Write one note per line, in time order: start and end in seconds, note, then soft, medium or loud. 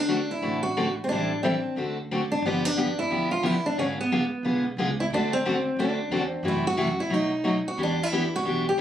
0.00 0.28 D2 medium
0.00 0.31 D4 medium
0.08 0.19 D3 medium
0.08 0.19 A3 loud
0.08 0.20 C4 medium
0.08 0.19 F#4 loud
0.08 0.20 A4 loud
0.31 0.61 E4 loud
0.42 0.95 A1 medium
0.42 0.62 D3 medium
0.42 0.62 A3 medium
0.42 0.62 C4 medium
0.42 0.63 F#4 medium
0.42 0.63 A4 medium
0.63 0.94 F#4 loud
0.77 0.87 D3 medium
0.77 0.87 A3 medium
0.77 0.87 C4 medium
0.77 0.87 F#4 loud
0.77 0.87 A4 medium
1.04 1.08 C4 medium
1.08 1.62 A1 loud
1.08 1.30 E3 medium
1.08 1.30 G3 medium
1.08 1.31 C4 medium
1.08 1.43 D4 medium
1.12 1.31 E4 medium
1.12 1.31 A4 medium
1.43 1.54 E3 medium
1.43 1.54 G3 medium
1.43 1.74 C4 medium
1.43 1.54 C4 medium
1.43 1.54 E4 medium
1.43 1.54 A4 medium
1.76 2.30 D2 medium
1.76 1.96 D3 medium
1.76 1.96 A3 medium
1.76 1.97 C4 medium
1.76 1.97 F#4 medium
1.76 1.97 A4 medium
2.11 2.21 D3 medium
2.11 2.21 A3 medium
2.11 2.21 C4 medium
2.11 2.21 F#4 medium
2.11 2.22 A4 medium
2.32 2.45 D4 medium
2.42 2.96 G1 medium
2.42 2.64 D3 medium
2.42 2.64 F3 medium
2.42 2.65 B3 medium
2.46 2.65 B3 medium
2.46 2.65 D4 medium
2.46 2.65 G4 medium
2.65 2.98 D4 medium
2.76 2.87 D3 medium
2.76 2.88 F3 medium
2.76 2.88 B3 medium
2.76 2.88 D4 medium
2.76 2.88 G4 medium
2.99 3.31 E4 medium
3.10 3.64 D2 medium
3.10 3.30 D3 medium
3.10 3.30 F3 medium
3.10 3.30 B3 medium
3.10 3.30 D4 medium
3.10 3.31 G4 medium
3.31 3.46 F4 medium
3.43 3.54 D3 medium
3.43 3.54 F3 medium
3.43 3.54 B3 medium
3.43 3.54 D4 medium
3.43 3.65 E4 loud
3.43 3.54 G4 medium
3.66 3.79 D4 medium
3.76 4.30 G#1 medium
3.76 3.97 D3 medium
3.76 3.97 G#3 medium
3.76 3.98 B3 medium
3.76 3.84 C#4 medium
3.76 3.98 F4 medium
3.76 3.98 G#4 medium
4.01 4.61 B3 medium
4.12 4.22 D3 medium
4.12 4.22 G#3 medium
4.12 4.22 B3 medium
4.12 4.22 F4 medium
4.12 4.22 G#4 medium
4.43 4.72 B1 medium
4.43 4.64 D3 medium
4.43 4.64 G#3 medium
4.43 4.64 B3 medium
4.43 4.64 F4 medium
4.43 4.64 G#4 medium
4.77 5.05 C#2 medium
4.77 4.89 D3 medium
4.77 4.88 G#3 medium
4.77 4.89 B3 medium
4.77 4.89 F4 medium
4.77 4.89 G#4 medium
5.00 5.05 E4 medium
5.10 5.64 D2 medium
5.10 5.32 D3 medium
5.10 5.32 A3 medium
5.10 5.32 C4 medium
5.10 5.32 D4 medium
5.10 5.32 F#4 medium
5.10 5.32 A4 medium
5.33 5.80 C4 loud
5.45 5.55 D3 medium
5.45 5.55 A3 medium
5.45 5.56 C4 medium
5.45 5.56 F#4 loud
5.45 5.56 A4 loud
5.76 6.05 D2 medium
5.76 5.98 D3 medium
5.76 5.98 A3 medium
5.76 5.98 C4 medium
5.76 6.27 D4 medium
5.76 5.98 F#4 medium
5.76 5.98 A4 medium
6.09 6.38 E2 medium
6.09 6.22 D3 medium
6.09 6.22 A3 medium
6.09 6.22 C4 medium
6.09 6.22 F#4 medium
6.09 6.22 A4 medium
6.27 6.42 C4 medium
6.43 6.97 F#2 medium
6.43 6.64 C3 medium
6.43 6.64 E3 medium
6.43 6.64 A3 medium
6.43 6.65 E4 medium
6.43 6.65 F#4 medium
6.48 6.67 E4 medium
6.67 7.00 F#4 medium
6.77 6.88 C3 loud
6.77 6.88 E3 medium
6.77 6.88 A3 medium
6.77 6.88 E4 medium
6.77 6.88 F#4 medium
7.00 7.14 E4 medium
7.10 7.64 B1 medium
7.10 7.30 B2 medium
7.10 7.30 F#3 medium
7.10 7.31 A3 medium
7.10 7.31 D#4 medium
7.10 7.31 F#4 medium
7.14 7.67 D#4 medium
7.44 7.55 B2 medium
7.44 7.55 F#3 medium
7.44 7.55 A3 medium
7.44 7.55 D#4 medium
7.44 7.55 F#4 medium
7.68 7.80 F#4 medium
7.78 8.31 E2 medium
7.78 7.98 E3 medium
7.78 7.98 B3 medium
7.78 7.98 D4 medium
7.78 7.98 G4 medium
7.83 8.03 D4 medium
8.03 8.35 E4 loud
8.12 8.22 E3 medium
8.12 8.23 B3 loud
8.12 8.23 D4 medium
8.12 8.23 G4 loud
8.36 8.65 F#4 medium
8.44 8.81 B1 medium
8.44 8.65 E3 medium
8.44 8.65 B3 medium
8.44 8.65 D4 medium
8.44 8.65 G4 medium
8.69 8.80 G4 medium
8.78 8.81 E3 loud